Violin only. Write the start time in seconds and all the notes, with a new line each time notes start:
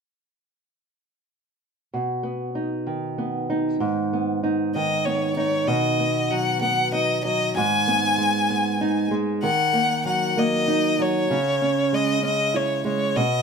4.75 D#5
5.05 C#5
5.37 C#5
5.68 D#5
6.31 F#5
6.62 F#5
6.94 D#5
7.25 D#5
7.57 G#5
9.43 F#5
10.06 F#5
10.39 D#5
11.02 C#5
11.94 D#5
12.25 D#5
12.56 C#5
12.87 C#5
13.17 D#5